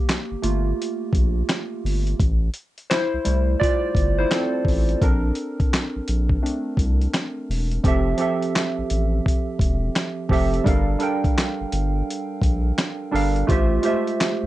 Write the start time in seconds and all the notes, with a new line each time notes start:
Already playing: A#3 G4
0.09 snare, clap, closed hi-hat
0.31 G1
0.43 G1 A3 A#3 F4, closed hi-hat
0.82 closed hi-hat
1.13 A#1, kick, closed hi-hat
1.49 snare, clap, closed hi-hat
1.84 G1, open hi-hat
2.07 closed hi-hat
2.20 A1, kick, closed hi-hat
2.54 closed hi-hat
2.78 closed hi-hat
2.90 E4 C5, snare, clap, closed hi-hat
3.14 C2
3.25 C2 G3 A3 E4, closed hi-hat
3.60 F4 D5, kick, closed hi-hat
3.95 G1, kick, closed hi-hat
4.19 E4 C5
4.31 C4 A4, snare, clap, closed hi-hat
4.65 A1, kick, open hi-hat
4.89 closed hi-hat
5.02 A#1 C4 D4 A4 A#4, kick, closed hi-hat
5.35 closed hi-hat
5.60 kick, closed hi-hat
5.74 snare, clap, closed hi-hat
5.96 A#1
6.08 A#1, closed hi-hat
6.29 kick
6.42 A3 C4 D4, closed hi-hat
6.77 C2, kick, closed hi-hat
7.01 closed hi-hat
7.14 snare, clap, closed hi-hat
7.50 E1, open hi-hat
7.71 closed hi-hat
7.83 F1 F3 C4 G4 A4, kick, closed hi-hat
7.88 E5
8.18 F3 C4 G4 A4, closed hi-hat
8.22 E5
8.42 closed hi-hat
8.56 snare, clap, closed hi-hat
8.78 A1
8.90 A1, closed hi-hat
9.26 kick, closed hi-hat
9.59 E1, kick, closed hi-hat
9.96 snare, clap, closed hi-hat
10.29 F1 F3 C4 G4 A4, kick, open hi-hat
10.33 E5
10.54 closed hi-hat
10.64 G1 G3 D4 A4 A#4, kick, closed hi-hat
10.68 F5
10.99 G3 D4 A4 A#4, closed hi-hat
11.03 G5
11.24 kick, closed hi-hat
11.38 snare, clap, closed hi-hat
11.61 G1
11.72 G1, closed hi-hat
12.10 closed hi-hat
12.42 A#1, kick, closed hi-hat
12.78 snare, clap, closed hi-hat
13.12 G1 G3 D4 A4 A#4, open hi-hat
13.16 F5
13.36 closed hi-hat
13.47 A1 A3 F4 G4 C5, kick, closed hi-hat
13.51 E5
13.82 G#3 F4 G4 C5, closed hi-hat
13.86 A3 E5
14.07 closed hi-hat
14.21 snare, clap, closed hi-hat
14.43 C2